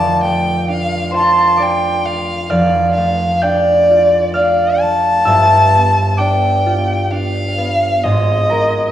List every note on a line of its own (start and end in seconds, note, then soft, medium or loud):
0.00 2.49 F1 medium
0.00 2.51 F2 medium
0.00 0.22 A3 soft
0.00 0.68 D4 medium
0.00 1.12 F4 soft
0.00 1.57 D5 medium
0.00 0.23 A5 medium
0.00 1.56 D6 medium
0.00 0.41 E6 loud
0.23 2.04 A3 medium
0.23 0.69 G5 medium
0.69 1.58 D4 medium
0.69 1.16 F5 medium
1.11 3.89 F4 medium
1.11 2.54 C5 medium
1.11 1.91 C6 medium
1.17 1.64 A5 medium
1.57 3.43 D4 medium
1.57 5.48 D5 medium
1.57 5.47 D6 medium
1.63 2.07 G5 medium
2.05 2.96 A3 soft
2.05 2.52 F5 medium
2.50 5.31 F1 medium
2.50 5.31 F2 medium
2.50 2.94 D5 medium
2.50 4.34 F5 medium
2.50 4.33 F6 loud
2.94 4.82 A3 medium
2.94 3.44 F5 medium
3.42 4.35 D4 medium
3.42 4.34 D5 medium
3.42 7.33 G5 medium
3.42 4.99 G6 loud
3.90 6.65 F4 medium
4.34 6.19 D4 medium
4.34 4.80 D5 medium
4.34 8.08 F5 medium
4.34 8.07 F6 loud
4.79 6.20 A5 loud
4.83 5.32 A3 soft
5.25 8.08 G1 medium
5.25 8.09 G2 medium
5.25 8.08 E5 medium
5.25 6.83 E6 loud
5.74 7.57 B3 soft
6.17 7.10 D4 medium
6.17 8.08 D5 medium
6.17 7.13 G5 medium
6.17 8.07 D6 medium
6.66 8.09 F4 medium
7.11 8.08 D4 medium
7.11 8.05 F5 medium
7.58 8.08 B3 soft
8.04 8.92 G#1 medium
8.04 8.92 G#2 medium
8.04 8.92 D#5 medium
8.50 8.92 G#3 medium
8.50 8.92 A#4 medium
8.50 8.92 A#5 loud